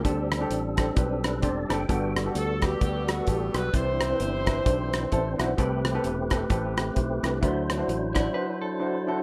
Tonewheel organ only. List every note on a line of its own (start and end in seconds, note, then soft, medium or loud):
0.05 1.86 G3 medium
0.05 1.86 C4 medium
0.05 1.85 D4 medium
0.05 1.86 A4 medium
1.24 1.42 B4 medium
1.43 1.69 D5 medium
1.69 2.13 G5 medium
1.89 3.70 G3 medium
1.89 3.70 B3 medium
1.89 3.70 F#4 medium
1.89 3.70 A4 medium
3.73 5.54 E3 medium
3.73 5.54 C4 soft
3.73 5.54 D4 soft
3.73 5.54 C5 medium
5.59 7.39 A3 medium
5.59 7.39 C4 medium
5.59 7.39 G4 medium
5.59 7.39 B4 medium
7.43 9.23 F#3 medium
7.43 9.23 D4 medium
7.43 9.23 E4 medium
7.43 7.49 B4 medium
7.48 9.23 C5 medium